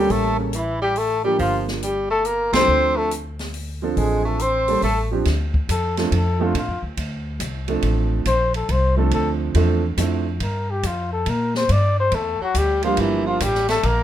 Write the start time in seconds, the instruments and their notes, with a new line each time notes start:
Already playing: tenor saxophone G3, grand piano G3 A#3 C#4 A4, trumpet G4
0.10 upright bass A1, tenor saxophone A3, trumpet A4, kick, open hi-hat
0.39 tenor saxophone C#3, trumpet C#4
0.53 tenor saxophone E3, trumpet E4, closed hi-hat
0.82 tenor saxophone G3, trumpet G4
0.96 tenor saxophone A3, trumpet A4, open hi-hat
1.24 grand piano F3 A#3 D4 G4, tenor saxophone G3, trumpet G4
1.39 upright bass G1, tenor saxophone F3, trumpet F4, kick, open hi-hat
1.68 snare
1.83 tenor saxophone G3, trumpet G4, closed hi-hat
2.10 tenor saxophone A3, trumpet A4
2.25 tenor saxophone A#3, trumpet A#4, closed hi-hat
2.52 upright bass C2, grand piano F3 C4 D4 A4, tenor saxophone C4, trumpet C5, snare, ride
2.68 upright bass D2
2.96 tenor saxophone A3, trumpet A4
3.11 closed hi-hat
3.39 snare, open hi-hat
3.54 open hi-hat
3.82 grand piano F3 C4 D4 A4, tenor saxophone F3, trumpet F4
3.97 upright bass A1, tenor saxophone G#3, trumpet G#4, kick, open hi-hat
4.25 tenor saxophone A3, trumpet A4
4.39 tenor saxophone C4, trumpet C5, closed hi-hat
4.68 grand piano G3 A#3 C#4 A4, open hi-hat
4.82 upright bass A1, tenor saxophone A3, trumpet A4, open hi-hat
5.11 grand piano F3 C4 D4 G4
5.25 upright bass D2, kick, snare, ride
5.54 kick
5.69 upright bass F2, trumpet A4, kick, hi-hat pedal, ride
5.97 grand piano F3 A3 C4 D4 A4, trumpet F4, snare, ride
6.11 upright bass F2, kick, ride
6.16 trumpet A4
6.39 grand piano F3 A3 C4 D4 A4, trumpet F4
6.54 upright bass A2, trumpet F4, kick, ride
6.68 upright bass F2
6.83 upright bass D2
6.97 upright bass D2, kick, ride
7.40 upright bass C2, kick, hi-hat pedal, ride
7.68 grand piano F3 A3 C4 D4 A4, ride
7.82 upright bass A1, kick, ride
8.25 upright bass A#1, trumpet C5, kick, hi-hat pedal, ride
8.54 trumpet A4, ride
8.69 upright bass C2, trumpet C5, kick, ride
8.96 grand piano F3 A3 C4 D4 A4, trumpet A4
9.11 upright bass D2, trumpet A4, kick, ride
9.55 upright bass E2, grand piano F3 A3 C4 D4 A4, kick, ride
9.97 upright bass F2, grand piano F3 A3 C4 D4 E4, kick, hi-hat pedal, ride
10.40 upright bass G2, trumpet A#4, kick, ride
10.71 trumpet G4
10.83 upright bass F2, trumpet F4, kick, hi-hat pedal, ride
11.13 trumpet A4
11.26 upright bass A#2, trumpet A#4, kick, ride
11.55 trumpet C5, snare
11.69 upright bass G2, trumpet D5, kick, ride
12.00 trumpet C5
12.12 upright bass E2, tenor saxophone A3, trumpet A4, kick, ride
12.40 tenor saxophone F#3, trumpet F#4, muted upright bass stroke
12.54 upright bass D2, tenor saxophone G3, trumpet G4, kick, hi-hat pedal, ride
12.83 grand piano F3 G3 A#3 D4 G4, tenor saxophone F3, trumpet F4, ride
12.97 upright bass G1, tenor saxophone E3, trumpet E4, kick, ride
13.26 tenor saxophone F3, trumpet F4
13.40 upright bass A1, tenor saxophone G3, trumpet G4, kick, hi-hat pedal, ride
13.55 snare
13.69 tenor saxophone A3, trumpet A4, snare, ride
13.83 upright bass A#1, tenor saxophone A#3, trumpet A#4, kick, ride